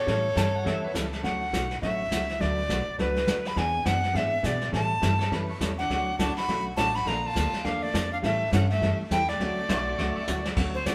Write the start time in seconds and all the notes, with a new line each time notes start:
Already playing: A4 C#5
0.07 A2 E3 G3 C#4 E4 A4, brush sweep, kick, snare
0.35 G2 E3 G3 C#4 E4 A4 A5, kick, snare, hi-hat pedal
0.56 F#5
0.65 E2 E3 G3 C#4 E4 A4 E5, brush sweep, kick, snare
0.84 B4
0.94 C#2 E3 G3 C#4 E4 A4, kick, snare, hi-hat pedal
1.13 snare
1.23 D2 D3 F#3 A3 C#4 F#4 F#5, brush sweep, kick, snare
1.53 B1 D3 F#3 A3 C#4 F#4, kick, snare, hi-hat pedal
1.71 snare
1.82 A1 D3 F#3 A3 C#4 F#4 E5, brush sweep, kick, snare
2.11 C#2 D3 F#3 A3 C#4 F#4, kick, snare, hi-hat pedal
2.29 snare
2.40 D2 D3 F#3 A3 D4 F#4 B4 D5, brush sweep, kick, snare
2.69 B1 D3 F#3 A3 D4 F#4 B4, kick, snare, hi-hat pedal
2.87 muted upright bass stroke
2.99 C#2 D3 F#3 A3 D4 F#4 B4, brush sweep, kick, snare
3.16 snare
3.27 D2 D3 F#3 A3 D4 F#4 B4, kick, snare, hi-hat pedal
3.45 B5, snare
3.56 E2 E3 B3 D4 G#4 G#5, brush sweep, kick, snare
3.85 F#2 E3 B3 D4 G#4 F#5, kick, snare, hi-hat pedal
4.03 snare
4.13 G#2 E3 B3 D4 G#4 E5, brush sweep, kick, snare
4.43 B2 E3 B3 D4 G#4 D5, kick, snare, hi-hat pedal
4.61 snare
4.72 A2 E3 G3 C#4 E4 A4 A5, brush sweep, kick, snare
5.02 G2 E3 G3 C#4 E4 A4, kick, snare, hi-hat pedal
5.19 A4, snare
5.31 E3 G3 C#4 E4 A4 B4, brush sweep, kick, snare
5.49 C#5
5.61 E2 E3 G3 C#4 E4 A4, kick, snare, hi-hat pedal
5.78 D4 F#5, snare
5.90 D2 D3 F#3 A3 C#4 F#4, brush sweep, kick, snare
6.19 C#2 D3 F#3 A3 C#4 D4 F#4 A5, kick, snare, hi-hat pedal
6.36 F#4 B5, muted upright bass stroke, snare
6.48 B1 D3 F#3 A3 C#4 F#4, brush sweep, kick, snare
6.77 A1 D3 F#3 A3 C#4 D4 F#4 A5, kick, snare, hi-hat pedal
6.95 F#4 B5, snare
7.06 A#1 D3 F3 A#3 D4 F4 A4 A#5, brush sweep, kick, snare
7.23 F4 A5
7.35 D2 D3 F3 A#3 D4 A4, kick, snare, hi-hat pedal
7.53 muted upright bass stroke, snare
7.64 E2 D3 F3 A#3 D4 A4 F5, brush sweep, kick, snare
7.83 A3 D5
7.93 F2 D3 F3 A#3 D4 A4, kick, snare, hi-hat pedal
8.11 D4 F5
8.22 A2 E3 G3 A3 C#4 E4 A4 E5, brush sweep, kick, snare
8.51 G2 E3 G3 C#4 E4 A4 F#5, kick, snare, hi-hat pedal
8.70 A3 E5, snare
8.81 F#2 E3 G3 C#4 E4 A4, brush sweep, kick, snare
8.99 muted upright bass stroke
9.11 E2 E3 G3 C#4 E4 A4 G5, kick, snare, hi-hat pedal
9.28 A3 D5, snare
9.40 D2 D3 F#3 A3 C#4 F#4, brush sweep, kick, snare
9.69 B1 D3 F#3 A3 C#4 F#4 D5, kick, snare, hi-hat pedal
9.87 F#4 D5
9.98 C#2 D3 F#3 A3 C#4 F#4 C#5 E5, brush sweep, kick, snare
10.16 C#5 E5
10.27 D2 D3 F#3 A3 C#4 F#4 D5, hi-hat pedal, mid tom
10.45 snare
10.57 D2 D3 F#3 A3 C#4 F#4, brush sweep, kick, snare, crash
10.74 C5
10.86 D3 F#3 A3 C#4 F#4 D5, kick, snare, hi-hat pedal